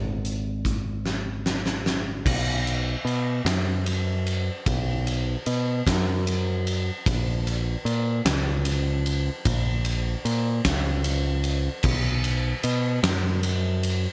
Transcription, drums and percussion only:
0.25 closed hi-hat
0.65 kick, closed hi-hat
1.06 snare
1.46 snare
1.66 snare
1.86 snare
2.26 kick, crash
2.67 ride
3.07 ride
3.46 snare, ride
3.86 ride
4.27 ride
4.66 kick, ride
5.07 ride
5.46 ride
5.87 kick, snare, ride
6.27 ride
6.67 ride
7.06 kick, ride
7.47 ride
7.86 ride
8.26 snare, ride
8.65 ride
9.06 ride
9.45 kick, ride
9.85 ride
10.25 ride
10.65 kick, snare, ride
11.04 ride
11.44 ride
11.83 kick, crash
12.24 ride
12.63 ride
13.04 snare, ride
13.43 ride
13.83 ride

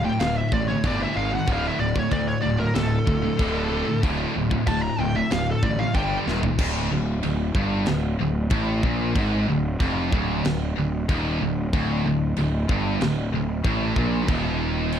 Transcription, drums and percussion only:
0.20 snare, china
0.52 kick
0.84 kick, china
1.48 kick, china
1.96 kick
2.12 kick, china
2.75 snare, china
3.07 kick
3.39 kick, china
4.03 kick, china
4.51 kick
4.67 kick, china
5.31 snare, china
5.63 kick
5.94 kick, china
6.28 snare
6.43 floor tom
6.59 kick, crash, china
7.23 china
7.55 kick
7.86 snare, china
8.50 kick, china
8.83 kick
9.16 kick, china
9.80 kick, china
10.12 kick
10.45 snare, china
11.09 kick, china
11.73 kick, china
12.36 china
12.69 kick
13.01 snare, china
13.64 kick, china
13.96 kick
14.28 kick, china
14.92 china

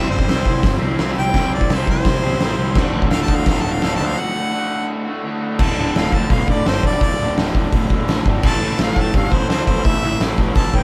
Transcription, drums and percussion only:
0.19 kick
0.29 snare, open hi-hat
0.45 kick
0.63 kick, snare, open hi-hat
0.98 snare, open hi-hat
1.34 kick, snare, open hi-hat
1.61 kick
1.70 snare, open hi-hat
1.87 kick
2.05 kick, snare, open hi-hat
2.40 snare, open hi-hat
2.75 kick, snare, crash
3.02 kick
3.11 snare, open hi-hat
3.28 kick
3.46 kick, snare, open hi-hat
3.81 snare, open hi-hat
5.59 kick, crash
5.95 snare, open hi-hat
6.12 kick
6.30 kick, open hi-hat
6.48 kick
6.66 snare, open hi-hat
6.83 kick
7.01 kick, open hi-hat
7.37 snare, open hi-hat
7.55 kick
7.73 kick, open hi-hat
7.90 kick
8.08 snare, open hi-hat
8.26 kick
8.43 kick, crash
8.78 snare, open hi-hat
8.96 kick
9.13 kick, open hi-hat
9.32 kick
9.49 snare, open hi-hat
9.67 kick
9.85 kick, open hi-hat
10.20 snare, open hi-hat
10.38 kick
10.55 kick, open hi-hat
10.74 kick

